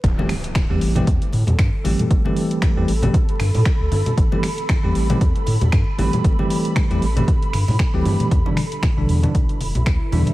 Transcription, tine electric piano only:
X:1
M:4/4
L:1/16
Q:"Swing 16ths" 1/4=116
K:Am
V:1 name="Tine electric piano"
z [E,G,A,CG] z3 [E,G,A,CG]2 [E,G,A,CG] z6 [E,G,A,CG]2- | [E,G,A,CG] [E,G,A,CG]4 [E,G,A,CG] z [E,G,A,CG] z8 | z [E,G,A,CG] z3 [E,G,A,CG]2 [E,G,A,CG] z6 [E,G,A,CG]2- | [E,G,A,CG] [E,G,A,CG]4 [E,G,A,CG] z [E,G,A,CG] z4 z [E,G,A,CG]3 |
z [B,,D,E,G,D] z3 [B,,D,E,G,D]2 [B,,D,E,G,D] z6 [B,,D,E,G,D]2 |]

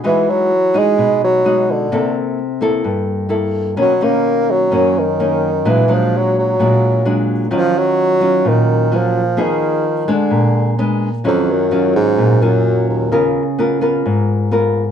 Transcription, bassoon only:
X:1
M:4/4
L:1/8
Q:1/4=129
K:Ebm
V:1 name="Bassoon" clef=bass
=E, ^F,2 ^G,2 F,2 =D,- | =D, z6 z | ^F, ^A,2 F,2 ^D,3 | _F, =F, ^F, F,4 z |
F, G,3 E,2 F,2 | E,3 =D,3 z2 | F,, G,,2 A,,2 G,,2 E,,- | E,, z6 z |]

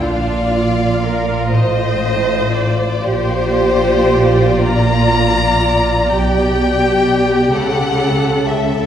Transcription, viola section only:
X:1
M:6/8
L:1/8
Q:3/8=40
K:Bblyd
V:1 name="Viola section"
D F B c3 | G3 F3 | [K:Glyd] G3 A3 |]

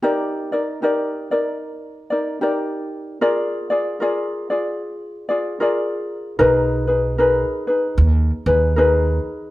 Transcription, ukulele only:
X:1
M:4/4
L:1/8
Q:"Swing" 1/4=76
K:Eb
V:1 name="Ukulele"
[EGBd] [EBd] [EGBd] [EBd]2 [EBd] [EGBd]2 | [FABd] [FAd] [FABd] [FAd]2 [FAd] [FABd]2 | [EAB_c] [EAc] [EABc] [EAc]2 [EAc] [EABc]2 |]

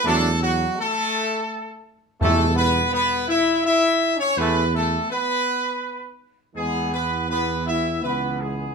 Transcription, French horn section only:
X:1
M:3/4
L:1/16
Q:1/4=82
K:Alyd
V:1 name="French horn section"
A,2 F,2 A,6 z2 | A,2 B,2 B,2 E2 E3 C | B,2 A,2 B,6 z2 | G,2 B,2 B,2 E2 B,2 G,2 |]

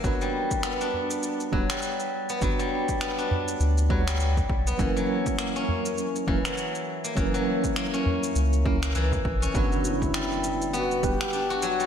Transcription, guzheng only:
X:1
M:4/4
L:1/16
Q:"Swing 16ths" 1/4=101
K:none
V:1 name="Guzheng" clef=bass
^F, G, z2 B, D z4 F, G, z3 B, | ^F, G, z2 B, D z4 F, G, z3 B, | E, ^F, z2 ^A, ^C z4 E, F, z3 A, | E, ^F, z2 ^A, ^C z4 A, A, E, z2 C |
^F, z3 G, z3 B, z3 D ^F F, G, |]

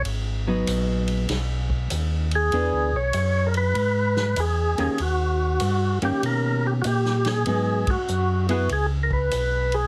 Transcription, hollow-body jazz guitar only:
X:1
M:4/4
L:1/8
Q:"Swing" 1/4=97
K:G#m
V:1 name="Hollow-body jazz guitar"
z [F,B,D]3 z4 | [E,B,=DG] z6 [^D,A,C=G] | z3 [D,A,C=G]3 z2 | [F,B,D] z2 [B,EG] z4 |]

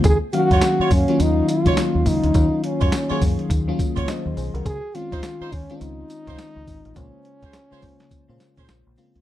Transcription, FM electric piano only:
X:1
M:4/4
L:1/16
Q:"Swing 16ths" 1/4=104
K:Ebdor
V:1 name="FM electric piano"
z2 [E,G,B,Df]3 z2 [E,G,B,DF]3 z [E,G,B,DEF]3 z2 | [E,G,B,DF]3 z2 [E,G,B,DA]3 z [E,G,B,DF]3 [ce]2 [Ac] [GB]- | [GB] z [E,A,CDF]3 z2 [E,A,CDF]3 z [E,A,CDF]3 z2 | [D,A,B,Fc]3 z2 [D,A,B,Fc]3 z [D,A,B,Fc]3 z2 [D,A,B,CF]2 |]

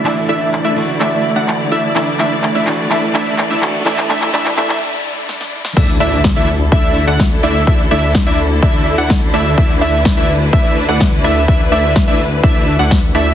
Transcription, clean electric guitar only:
X:1
M:4/4
L:1/8
Q:1/4=126
K:D
V:1 name="Clean electric guitar"
[E,A,DE]3 [E,A,DF]4- [E,A,DF] | [E,A,DE]3 [E,A,DF] [E,A,DE]3 [E,A,DF] | [E,A,DE]2 [E,A,DE]2 z4 | z8 |
z8 | z8 | z8 |]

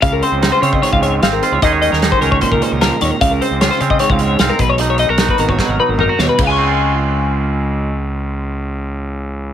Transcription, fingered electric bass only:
X:1
M:4/4
L:1/16
Q:1/4=151
K:Db
V:1 name="Fingered electric bass" clef=bass
D,,2 z D,,2 z D,2 z D,,3 A,,,2 z D,, | E,,3 E,,2 z D,,2 z D,, z D,,2 z E,, z | D,,2 z D,,2 z D,2 z D,,3 C,, z _C,,2- | _C,,3 C,,2 z A,,,2 z A,,, z A,,,2 z E,, z |
D,,16- | D,,16 |]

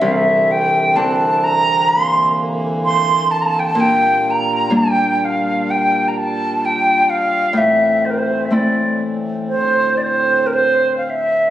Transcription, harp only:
X:1
M:4/4
L:1/8
Q:1/4=64
K:Aphr
V:1 name="Harp"
C,,2 [E,CD]6 | B,,2 [G,B,D]6 | A,,2 [A,CE]6 |]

